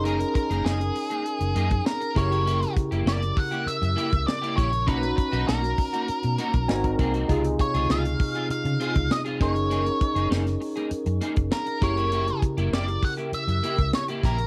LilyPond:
<<
  \new Staff \with { instrumentName = "Lead electric guitar" } { \time 4/4 \key ges \lydian \tempo 4 = 99 bes'8 bes'8 aes'2 bes'8 des''8~ | des''8 r8 d''8 ges''8 fes''4 d''8 des''8 | ces''8 ces''8 bes'2~ bes'8 r8 | r8 des''8 f''4 f''4 ees''8 des''8~ |
des''4 r2 bes'8 des''8~ | des''8 r8 d''8 ges''8 fes''4 des''8 bes'8 | }
  \new Staff \with { instrumentName = "Tine electric piano" } { \time 4/4 \key ges \lydian << { r1 | r1 | r2. aes''16 bes''8. | r1 |
r1 | r1 | } \\ { <des' ees' aes' bes'>2.~ <des' ees' aes' bes'>8 <des fes' g' bes'>8~ | <des fes' g' bes'>2.~ <des fes' g' bes'>8 r8 | <des' ees' ges' bes''>2. <c' ees' ges' bes'>4 | <c ees' f' aes'>2.~ <c ees' f' aes'>8 <des' ees' aes' bes'>8~ |
<des' ees' aes' bes'>2.~ <des' ees' aes' bes'>8 <des fes' g' bes'>8~ | <des fes' g' bes'>2.~ <des fes' g' bes'>8 r8 | } >> }
  \new Staff \with { instrumentName = "Clean electric guitar" } { \time 4/4 \key ges \lydian <bes ees' aes'>16 r8 <bes ees' aes'>16 <bes ees' aes'>16 r8 <bes ees' aes'>16 r8 <bes ees' aes'>16 r8. <bes fes' bes'>16 <bes fes' g'>16 | <bes fes' g'>16 r8 <bes fes' g'>16 <bes fes' g'>16 r8 <bes fes' g'>16 r8 <bes fes' g'>16 r8 <bes fes' g'>16 <bes fes' g'>16 r16 | <bes ees' ges'>16 r8 <bes ees' ges'>16 <bes ees' ges'>16 r8 <bes ees' ges'>16 r8 <bes ees' ges'>16 r8. <bes c' aes'>16 <bes c' ges'>16 | <c' f' aes'>16 r8 <c' f' aes'>16 <c' f' aes'>16 r8 <c' f' aes'>16 r8 <c' f' aes'>16 r8 <c' f' aes'>16 <bes ees' aes'>16 r16 |
<bes ees' aes'>16 r8 <bes ees' aes'>16 <bes ees' aes'>16 r8 <bes ees' aes'>16 r8 <bes ees' aes'>16 r8. <bes fes' bes'>16 <bes fes' g'>16 | <bes fes' g'>16 r8 <bes fes' g'>16 <bes fes' g'>16 r8 <bes fes' g'>16 r8 <bes fes' g'>16 r8 <bes fes' g'>16 <bes fes' g'>16 r16 | }
  \new Staff \with { instrumentName = "Fingered electric bass" } { \clef bass \time 4/4 \key ges \lydian ges,,8 r16 ges,,16 ges,,8 r8. ges,,16 ges,8 r8 ges,,8~ | ges,,8 r16 ges,,16 ges,,8 r8. ges,16 r16 des,16 r8 bes,,8 | ces,8 r16 ces,16 ces,8 r8. ces16 r16 ces,16 aes,,8 c,8 | des,8 r16 des,16 des,8 r8. des16 r16 des,16 r8 ges,,8~ |
ges,,8 r16 ges,,16 ges,,8 r8. ges,16 r16 ges,,16 r8 ges,,8~ | ges,,8 r16 ges,,16 r4 r16 ges,16 r16 des,16 r8 bes,,8 | }
  \new DrumStaff \with { instrumentName = "Drums" } \drummode { \time 4/4 hh16 hh16 <hh bd>16 hh16 sn16 hh16 hho16 hh16 hh16 hh16 hh16 <hh bd>16 sn16 hh16 <hh bd sn>16 hh16 | hh16 hh16 <hh bd>16 hh16 sn16 hh16 <hho bd>16 hh16 hh16 hh16 hh16 <hh bd>16 sn16 hh16 <hh bd>16 hh16 | <hh bd>16 hh16 <hh bd>16 hh16 sn16 <hh sn>16 <hho bd>16 hh16 hh16 hh16 hh16 <hh bd>16 sn16 <hh bd>16 <hh bd>16 hh16 | <hh bd>16 hh16 <hh bd>16 hh16 sn16 hh16 <hho bd>16 hh16 hh16 hh16 hh16 <hh bd>16 sn16 hh16 <hh bd sn>16 hh16 |
hh16 hh16 <hh bd>16 hh16 sn16 <hh sn>16 hho16 hh16 hh16 hh16 hh16 <hh bd>16 sn16 hh16 <hh bd sn>16 hh16 | hh16 hh16 <hh bd>16 hh16 sn16 hh16 <hho bd>16 hh16 hh16 hh16 hh16 <hh bd>16 sn16 hh16 <hh bd sn>16 hh16 | }
>>